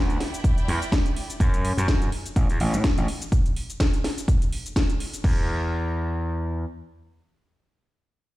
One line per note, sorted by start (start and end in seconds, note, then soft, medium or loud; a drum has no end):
0.00 0.16 D2 medium
0.00 0.19 D4 medium
0.00 0.19 B4 medium
0.00 0.19 F#5 medium
0.10 closed hi-hat medium
0.10 shaker soft
0.20 1.39 E4 medium
0.20 1.39 D5 medium
0.20 1.39 G5 medium
0.20 snare medium
0.20 open hi-hat loud
0.34 closed hi-hat soft
0.34 shaker medium
0.44 kick loud
0.44 closed hi-hat medium
0.44 shaker medium
0.57 muted slap bass stroke soft
0.57 closed hi-hat medium
0.57 shaker soft
0.68 0.79 E2 medium
0.68 open hi-hat loud
0.82 shaker medium
0.92 kick loud
0.92 snare loud
0.92 closed hi-hat medium
0.92 shaker medium
1.06 closed hi-hat medium
1.06 shaker soft
1.17 open hi-hat loud
1.30 closed hi-hat soft
1.30 shaker medium
1.40 1.73 F#2 loud
1.40 kick loud
1.40 closed hi-hat medium
1.40 shaker medium
1.54 closed hi-hat medium
1.54 shaker soft
1.65 open hi-hat loud
1.77 2.08 F#2 medium
1.77 closed hi-hat soft
1.77 shaker medium
1.88 kick loud
1.88 snare loud
1.88 closed hi-hat medium
1.88 shaker medium
2.02 closed hi-hat medium
2.02 shaker soft
2.12 open hi-hat medium
2.26 closed hi-hat soft
2.26 shaker medium
2.36 2.47 A1 medium
2.36 kick loud
2.36 closed hi-hat medium
2.36 shaker medium
2.50 2.58 E2 medium
2.50 closed hi-hat medium
2.50 shaker soft
2.60 2.75 A1 medium
2.60 open hi-hat loud
2.74 2.82 A2 loud
2.74 shaker medium
2.84 kick loud
2.84 snare loud
2.84 closed hi-hat medium
2.84 shaker medium
2.98 3.06 A1 medium
2.98 closed hi-hat medium
2.98 shaker soft
3.08 open hi-hat loud
3.22 closed hi-hat soft
3.22 shaker medium
3.32 kick loud
3.32 closed hi-hat medium
3.32 shaker medium
3.46 closed hi-hat medium
3.46 shaker soft
3.56 open hi-hat loud
3.70 closed hi-hat soft
3.70 shaker medium
3.80 kick loud
3.80 snare loud
3.80 closed hi-hat medium
3.80 shaker medium
3.94 closed hi-hat medium
3.94 shaker soft
4.04 snare medium
4.04 open hi-hat loud
4.18 closed hi-hat soft
4.18 shaker medium
4.28 kick loud
4.28 closed hi-hat medium
4.28 shaker medium
4.42 closed hi-hat medium
4.42 shaker soft
4.52 open hi-hat loud
4.66 closed hi-hat soft
4.66 shaker medium
4.76 kick loud
4.76 snare loud
4.76 closed hi-hat medium
4.76 shaker medium
4.90 closed hi-hat medium
4.90 shaker soft
5.00 open hi-hat loud
5.14 closed hi-hat soft
5.14 shaker medium
5.24 6.64 E2 loud
5.24 kick loud
5.24 crash medium